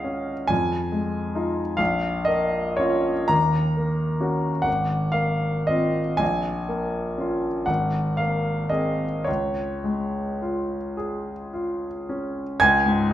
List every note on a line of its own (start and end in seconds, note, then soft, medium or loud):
0.00 0.46 C#2 medium
0.00 0.52 G#3 soft
0.00 0.04 C#4 soft
0.00 0.53 G#4 soft
0.00 0.53 D#5 medium
0.00 0.53 F5 medium
0.04 0.49 C#4 soft
0.47 1.76 F2 medium
0.47 1.78 G#5 medium
0.92 1.61 G#3 soft
1.35 1.75 D#4 soft
1.35 1.76 F4 soft
1.77 3.26 A#1 medium
1.77 2.27 F5 medium
2.25 3.11 A#3 soft
2.25 2.79 D#5 medium
2.77 3.26 C#4 soft
2.77 3.26 F4 soft
2.77 3.29 C#5 medium
3.28 4.62 D#2 medium
3.28 4.65 A#5 medium
3.77 4.49 A#3 soft
4.20 4.62 C#4 soft
4.20 4.62 F#4 soft
4.62 6.15 G#1 medium
4.62 5.13 F#5 medium
5.12 5.99 A#3 soft
5.12 5.66 F5 medium
5.67 6.17 C4 soft
5.67 6.17 F4 soft
5.67 6.20 D#5 medium
6.17 7.63 A#1 medium
6.17 7.66 G#5 medium
6.69 7.47 A#3 soft
7.18 7.64 C#4 soft
7.18 7.65 F4 soft
7.66 9.23 G#1 medium
7.66 8.19 F#5 medium
8.17 9.05 A#3 soft
8.17 8.71 F5 medium
8.69 9.22 C4 soft
8.69 9.23 G#4 soft
8.69 9.26 D#5 medium
9.24 12.56 C#2 medium
9.24 10.96 C#5 medium
9.84 10.75 G#3 soft
10.42 11.31 F4 soft
10.97 11.86 G#4 soft
11.53 12.41 F4 soft
12.09 12.61 C#4 soft
12.60 13.13 C#2 medium
12.60 13.13 G#5 medium
12.60 13.13 G#6 loud
12.86 13.13 G#2 medium